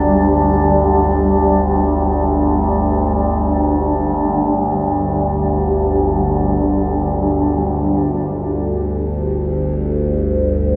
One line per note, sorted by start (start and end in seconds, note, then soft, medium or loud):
0.00 7.82 G1 medium
0.00 7.83 D2 medium
0.00 7.87 G3 medium
0.00 7.86 D4 medium
0.00 7.86 G4 medium
0.00 7.87 D5 medium
7.83 10.76 G1 medium
7.83 10.76 D2 medium